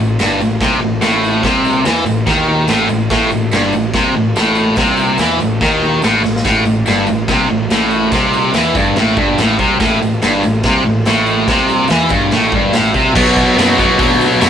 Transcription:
Already playing: picked electric bass A1
0.00 overdriven electric guitar A2
0.09 tambourine
0.19 picked electric bass G1, overdriven electric guitar G2, snare, tambourine, crash
0.39 picked electric bass A1, overdriven electric guitar A2, tambourine
0.51 tambourine
0.60 picked electric bass C2, overdriven electric guitar C3, kick, snare, tambourine, crash
0.80 picked electric bass A1, overdriven electric guitar A2
1.01 picked electric bass A1, overdriven electric guitar A2, snare, tambourine, crash
1.24 tambourine
1.43 picked electric bass C2, overdriven electric guitar C3, kick, snare, tambourine, crash
1.65 tambourine
1.84 picked electric bass E2, overdriven electric guitar E3, snare, tambourine, crash
2.05 picked electric bass A1, overdriven electric guitar A2, tambourine
2.17 tambourine
2.26 picked electric bass D#2, overdriven electric guitar D#3, kick, snare, tambourine, crash
2.66 picked electric bass A1, overdriven electric guitar A2, snare, tambourine, crash
2.87 picked electric bass A1, overdriven electric guitar A2, tambourine
3.10 picked electric bass A1, overdriven electric guitar A2, kick, snare, tambourine, crash
3.29 picked electric bass A1, overdriven electric guitar A2, tambourine
3.51 picked electric bass G1, overdriven electric guitar G2, snare, tambourine, crash
3.72 picked electric bass A1, overdriven electric guitar A2, tambourine
3.83 tambourine
3.93 picked electric bass C2, overdriven electric guitar C3, kick, snare, tambourine, crash
4.15 picked electric bass A1, overdriven electric guitar A2
4.36 picked electric bass A1, overdriven electric guitar A2, snare, tambourine, crash
4.55 tambourine
4.76 picked electric bass C2, overdriven electric guitar C3, kick, snare, tambourine, crash
4.87 tambourine
4.97 tambourine
5.18 picked electric bass E2, overdriven electric guitar E3, snare, tambourine, crash
5.39 picked electric bass A1, overdriven electric guitar A2, tambourine
5.50 tambourine
5.61 picked electric bass D#2, overdriven electric guitar D#3, kick, snare, tambourine, crash
5.83 tambourine
6.02 picked electric bass A1, overdriven electric guitar A2, snare, tambourine, crash
6.22 picked electric bass A1, overdriven electric guitar A2, snare, tambourine
6.34 snare, tambourine
6.45 picked electric bass A1, overdriven electric guitar A2, kick, snare, tambourine, crash
6.65 picked electric bass A1, overdriven electric guitar A2, tambourine
6.76 tambourine
6.86 picked electric bass G1, overdriven electric guitar G2, snare, tambourine, crash
7.07 picked electric bass A1, overdriven electric guitar A2, tambourine
7.18 tambourine
7.28 picked electric bass C2, overdriven electric guitar C3, kick, snare, tambourine, crash
7.49 picked electric bass A1, overdriven electric guitar A2
7.69 picked electric bass A1, overdriven electric guitar A2, snare, tambourine, crash
7.81 tambourine
7.91 tambourine
8.12 picked electric bass C2, overdriven electric guitar C3, kick, snare, tambourine, crash
8.33 tambourine
8.43 tambourine
8.54 picked electric bass E2, overdriven electric guitar E3, snare, tambourine, crash
8.75 picked electric bass G1, overdriven electric guitar G2, kick, tambourine
8.96 picked electric bass A1, overdriven electric guitar A2, snare, tambourine, crash
9.16 picked electric bass G1, overdriven electric guitar G2, kick
9.38 picked electric bass A1, overdriven electric guitar A2, snare, tambourine, crash
9.58 picked electric bass C2, overdriven electric guitar C3, kick, tambourine
9.80 picked electric bass A1, overdriven electric guitar A2, kick, snare, tambourine, crash
10.01 picked electric bass A1, overdriven electric guitar A2, tambourine
10.14 tambourine
10.22 picked electric bass G1, overdriven electric guitar G2, snare, tambourine, crash
10.43 picked electric bass A1, overdriven electric guitar A2, tambourine
10.55 tambourine
10.63 picked electric bass C2, overdriven electric guitar C3, kick, snare, tambourine, crash
10.86 picked electric bass A1, overdriven electric guitar A2
11.05 picked electric bass A1, overdriven electric guitar A2, snare, tambourine, crash
11.27 tambourine
11.47 picked electric bass C2, overdriven electric guitar C3, kick, snare, tambourine, crash
11.59 tambourine
11.68 tambourine
11.88 picked electric bass E2, overdriven electric guitar E3, snare, tambourine, crash
12.09 picked electric bass G1, overdriven electric guitar G2, kick, tambourine
12.21 tambourine
12.31 picked electric bass A1, overdriven electric guitar A2, snare, tambourine, crash
12.43 tambourine
12.52 picked electric bass G1, overdriven electric guitar G2, kick
12.73 picked electric bass A1, overdriven electric guitar A2, snare, tambourine, crash
12.94 picked electric bass C2, overdriven electric guitar C3, kick, tambourine
13.06 tambourine
13.15 picked electric bass B1, overdriven electric guitar B2 F#3 B3, kick, crash, tambourine
13.36 kick, tambourine
13.57 picked electric bass F#2, overdriven electric guitar B2 F#3 B3, snare, open hi-hat, tambourine
13.78 overdriven electric guitar B2 F#3 B3, kick, tambourine
13.98 picked electric bass D2, overdriven electric guitar B2 F#3 B3, kick, open hi-hat
14.21 tambourine
14.39 picked electric bass F#2, overdriven electric guitar B2 F#3 B3, snare, open hi-hat, tambourine

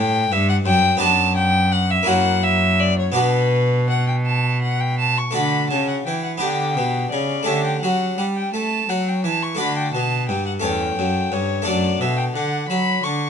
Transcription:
Already playing: harpsichord A2 E4 G4, cello A2, violin G5
0.31 cello G2, harpsichord G2, violin E5
0.49 violin F#5
0.66 harpsichord F#2, cello F#2, violin G5
0.97 cello F#2, harpsichord B3 D4 F#4, violin A5
1.01 harpsichord F#2
1.36 violin G5
1.72 violin F#5
1.90 violin E5
2.03 harpsichord A#3 E4 F#4
2.07 cello F#2, harpsichord F#2, violin F#5
2.43 violin E5
2.80 violin D5
2.99 violin C#5
3.12 harpsichord B3 D4 F#4
3.16 harpsichord B2, cello B2, violin B4
3.90 violin F#5
4.08 violin G5
4.26 violin A5
4.62 violin F#5
4.80 violin G5
4.99 violin A5
5.18 violin C#6
5.31 harpsichord A3 D4 F#4, violin B5
5.35 harpsichord D3, cello D3
5.70 harpsichord C#3, cello C#3, violin A5
5.88 violin F#5
6.06 cello E3, harpsichord E3, violin G5
6.24 violin F#5
6.38 harpsichord B3 D4 G4, violin G5
6.42 cello D3, harpsichord D3
6.77 harpsichord B2, cello B2
7.11 harpsichord C#3, cello C#3, violin D5
7.43 harpsichord A3 C#4 G4, violin E5
7.47 harpsichord D3, cello D3
7.64 violin G5
7.81 cello F#3, harpsichord F#3, violin F#5
8.18 cello G3, harpsichord G3, violin F#5
8.36 violin G5
8.54 cello A3, harpsichord A3, violin A5
8.89 cello F#3, harpsichord F#3, violin F#5
9.08 violin G5
9.24 harpsichord E3, cello E3, violin A5
9.43 violin C#6
9.55 harpsichord A3 D4 F#4
9.59 cello D3, harpsichord D3, violin B5
9.77 violin G5
9.94 cello B2, harpsichord B2, violin A5
10.29 cello G2, harpsichord G2, violin G5
10.46 violin F#5
10.60 cello E2, harpsichord A3 C#4 A4
10.64 harpsichord E2, violin G5
10.98 cello F#2, harpsichord F#2
11.32 harpsichord G2, cello G2, violin C#5
11.62 harpsichord A3 D4 A4
11.66 cello F#2, harpsichord F#2, violin D5
12.00 cello B2, harpsichord B2, violin E5
12.17 violin G5
12.34 cello D3, harpsichord D3, violin F#5
12.69 cello F#3, harpsichord F#3, violin B5
13.03 cello D3, harpsichord D3, violin C#6

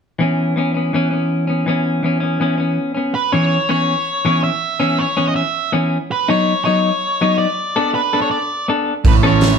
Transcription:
0.19 clean electric guitar E3 B3 C#4
0.56 clean electric guitar E3 B3 C#4
0.74 clean electric guitar B3 C#4
0.93 clean electric guitar E3 B3 C#4
1.11 clean electric guitar B3 C#4
1.47 clean electric guitar B3 C#4
1.66 clean electric guitar E3 B3 C#4
2.03 clean electric guitar E3 B3 C#4
2.20 clean electric guitar B3 C#4
2.40 clean electric guitar E3 B3 C#4
2.58 clean electric guitar B3 C#4
2.95 clean electric guitar B3 C#4
3.15 lead electric guitar B4
3.32 clean electric guitar E3 B3 C#4, lead electric guitar C#5
3.69 clean electric guitar E3 B3 C#4, lead electric guitar C#5
4.25 clean electric guitar E3 B3 C#4
4.44 lead electric guitar E5
4.80 clean electric guitar E3 B3 C#4
5.00 lead electric guitar C#5
5.17 clean electric guitar E3 B3 C#4
5.28 lead electric guitar D#5
5.36 lead electric guitar E5
5.72 clean electric guitar E3 B3 C#4
6.12 lead electric guitar B4
6.28 clean electric guitar F#3 B3 D#4, lead electric guitar C#5
6.65 clean electric guitar F#3 B3 D#4, lead electric guitar C#5
7.21 clean electric guitar F#3 B3 D#4
7.38 lead electric guitar D5
7.76 clean electric guitar B3 D4 A4
7.95 lead electric guitar B4
8.13 clean electric guitar B3 D4 A4
8.22 lead electric guitar C#5
8.31 lead electric guitar D5
8.68 clean electric guitar B3 D4 A4
9.05 picked electric bass A1, distorted electric guitar A2, lead electric guitar B4, kick, open hi-hat
9.23 clean electric guitar E3 B3 C#4 A4, distorted electric guitar C#4, lead electric guitar C#5
9.41 distorted electric guitar E4, snare, open hi-hat

